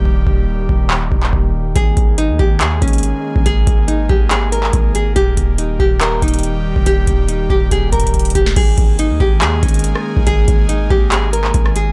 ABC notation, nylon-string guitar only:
X:1
M:4/4
L:1/8
Q:1/4=141
K:D#phr
V:1 name="Nylon-string guitar"
z8 | G2 D =G ^G C3 | G2 D =G ^G A2 G | =G2 D G A D3 |
=G2 D G ^G A2 =G | G2 D =G ^G C3 | G2 D =G ^G A2 G |]